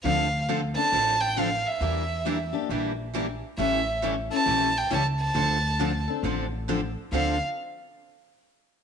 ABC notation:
X:1
M:4/4
L:1/8
Q:"Swing" 1/4=136
K:Dm
V:1 name="Violin"
f2 z a2 g f e- | e3 z4 z | e2 z a2 g a a- | a3 z4 z |
f z6 z |]
V:2 name="Steel-string acoustic guitar"
[D,F,CDA] z [D,F,CDA] [CDA] [D,F,CDA] z [D,F,CDA] z | [E,B,DG] z [E,B,DG] [B,DG] [E,B,DG] z [E,B,DG] z | [E,G,^CEA] z [E,G,CEA] [CEA] [E,G,CEA] z [E,G,CEA] z | [D,F,CDA] z [D,F,CDA] [CDA] [D,F,CDA] z [D,F,CDA] z |
[D,F,CDA] z6 z |]
V:3 name="Steel-string acoustic guitar"
[D,F,CDA] z [D,F,CDA] z [D,F,CDA] z [D,F,CDA] z | [E,G,DEB] z [E,G,DEB] z [E,G,DEB] z [E,G,DEB] z | [E,G,^CEA] z [E,G,CEA] z [E,G,CEA] z [E,G,CEA] z | [D,F,CDA] z [D,F,CDA] z [D,F,CDA] z [D,F,CDA] z |
[D,F,CDA] z6 z |]
V:4 name="Upright bass" clef=bass
D,,4 A,,,4 | E,,4 B,,,4 | A,,,4 B,,,2 ^C,,2 | D,,4 A,,,4 |
D,, z6 z |]